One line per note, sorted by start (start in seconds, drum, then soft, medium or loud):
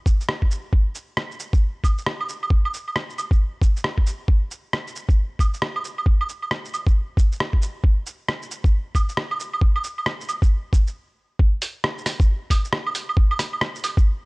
0.06 kick loud
0.06 shaker medium
0.21 shaker soft
0.29 cross-stick loud
0.42 kick medium
0.51 shaker medium
0.73 kick loud
0.95 shaker medium
1.17 cross-stick loud
1.31 shaker soft
1.40 shaker medium
1.53 kick loud
1.53 shaker soft
1.84 kick medium
1.84 claves medium
1.84 shaker medium
1.98 shaker soft
2.06 cross-stick loud
2.21 claves medium
2.29 shaker medium
2.43 claves soft
2.50 kick loud
2.65 claves medium
2.74 shaker medium
2.88 claves soft
2.96 cross-stick loud
3.10 shaker soft
3.18 claves soft
3.18 shaker medium
3.31 kick loud
3.31 shaker soft
3.62 kick loud
3.62 shaker medium
3.77 shaker soft
3.84 cross-stick loud
3.98 kick medium
4.06 shaker medium
4.28 kick loud
4.51 shaker soft
4.73 cross-stick loud
4.87 shaker soft
4.96 shaker medium
5.09 kick loud
5.09 shaker soft
5.39 kick medium
5.39 claves medium
5.39 shaker medium
5.54 shaker soft
5.62 cross-stick loud
5.76 claves medium
5.84 shaker medium
5.98 claves soft
6.06 kick loud
6.21 claves medium
6.29 shaker soft
6.42 claves soft
6.51 cross-stick loud
6.65 shaker soft
6.74 claves soft
6.74 shaker medium
6.87 kick medium
6.87 shaker soft
7.17 kick loud
7.17 shaker medium
7.32 shaker soft
7.40 cross-stick loud
7.53 kick medium
7.62 shaker medium
7.84 kick loud
8.06 shaker medium
8.29 cross-stick loud
8.42 shaker soft
8.51 shaker medium
8.64 kick loud
8.64 shaker soft
8.95 kick medium
8.95 claves medium
8.95 shaker medium
9.09 shaker soft
9.17 cross-stick loud
9.31 claves medium
9.40 shaker medium
9.53 claves medium
9.61 kick loud
9.76 claves medium
9.84 shaker medium
9.98 claves soft
10.06 cross-stick loud
10.21 shaker soft
10.29 claves medium
10.29 shaker medium
10.42 kick loud
10.42 shaker soft
10.73 kick loud
10.73 shaker medium
10.87 shaker soft
11.39 kick loud
11.62 open hi-hat medium
11.62 shaker medium
11.84 cross-stick loud
11.98 shaker soft
12.06 cross-stick medium
12.06 open hi-hat medium
12.06 shaker medium
12.20 kick loud
12.20 shaker soft
12.50 kick medium
12.50 open hi-hat medium
12.50 claves medium
12.50 shaker medium
12.65 shaker soft
12.73 cross-stick loud
12.87 claves medium
12.95 open hi-hat medium
12.95 shaker medium
13.09 claves medium
13.17 kick loud
13.31 claves medium
13.39 cross-stick medium
13.39 open hi-hat medium
13.39 shaker medium
13.53 claves soft
13.61 cross-stick loud
13.75 shaker soft
13.84 open hi-hat medium
13.84 claves medium
13.84 shaker medium
13.97 kick loud
13.97 shaker soft